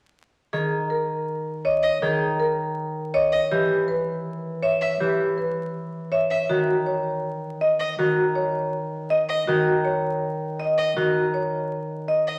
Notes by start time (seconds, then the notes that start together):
0.53 D#3 G#4
0.90 A#4
1.65 C#5 D#5
1.83 D#5
2.02 D#3 G#4
2.40 A#4
3.14 C#5 D#5
3.32 D#5
3.51 E3 G4
3.88 B4
4.62 C#5 E5
4.81 E5
5.00 E3 G4
5.38 B4
6.12 C#5 E5
6.30 E5
6.49 D#3 F#4
6.86 C#5
7.61 D#5
7.80 D#5
7.99 D#3 F#4
8.35 C#5
9.10 D#5
9.29 D#5
9.48 D#3 F#4
9.85 C#5
10.59 D#5
10.78 D#5
10.97 D#3 F#4
11.34 C#5
12.08 D#5
12.27 D#5